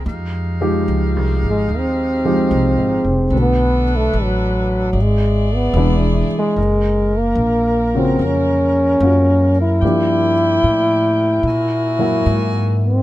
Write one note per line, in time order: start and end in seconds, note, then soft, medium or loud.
0.06 0.85 F2 medium
0.06 3.14 G#3 medium
0.06 3.14 D#4 medium
0.06 3.14 G4 medium
0.06 3.14 F5 medium
0.61 0.84 F3 medium
0.61 0.85 G#3 soft
0.61 0.85 D#4 medium
0.61 0.85 G4 medium
0.88 1.16 C#2 medium
1.16 1.42 C2 soft
1.43 1.68 G#1 soft
1.50 1.80 G#3 medium
1.69 2.48 D#2 medium
1.78 3.37 C4 medium
2.25 2.48 F3 medium
2.25 2.49 G#3 medium
2.25 2.49 D#4 medium
2.25 2.49 G4 medium
2.51 2.78 C2 medium
2.78 3.04 G#1 soft
3.04 3.30 F1 medium
3.30 4.11 B1 medium
3.30 3.82 D3 soft
3.30 3.83 A3 soft
3.30 3.83 B3 soft
3.30 4.93 D4 medium
3.30 4.93 A4 medium
3.30 4.93 B4 medium
3.34 3.83 F#4 soft
3.41 3.98 B3 medium
3.96 4.25 A3 medium
4.13 4.93 A1 medium
4.23 5.04 F#3 medium
4.92 5.73 G#1 medium
4.92 6.54 E4 medium
4.92 6.55 G#4 medium
4.92 6.54 D5 medium
5.02 5.57 G#3 medium
5.55 5.98 B3 medium
5.74 6.26 E1 medium
5.74 6.26 E3 medium
5.74 6.26 G#3 medium
5.74 6.26 D4 medium
5.74 6.26 E4 medium
6.39 7.20 G#3 medium
6.56 7.35 F#1 medium
6.56 9.79 A#4 medium
7.19 7.97 A#3 medium
7.35 8.16 A#1 medium
7.94 8.18 C#3 medium
7.94 8.18 A#3 medium
7.94 8.18 F4 soft
7.94 8.18 F#4 medium
7.99 8.27 C4 medium
8.19 8.98 F2 medium
8.25 9.59 C#4 medium
9.00 9.79 F#2 medium
9.00 9.51 A#3 medium
9.00 9.51 C#4 soft
9.00 9.51 F4 medium
9.00 9.51 F#4 medium
9.62 12.45 E4 medium
9.81 10.61 G2 medium
9.81 10.32 F3 medium
9.81 10.32 A#3 soft
9.81 10.32 D4 soft
9.81 10.33 G4 medium
9.81 12.92 A#4 medium
9.81 11.43 D5 medium
9.81 11.43 G5 medium
10.64 11.43 A2 medium
11.43 12.23 A#2 medium
11.43 12.92 F#4 medium
11.43 12.92 E5 medium
11.43 12.92 G#5 medium
11.99 12.23 F#3 medium
11.99 12.24 A#3 medium
11.99 12.24 E4 medium
11.99 12.24 F#4 medium
12.26 13.02 G#2 medium
12.87 13.02 C4 medium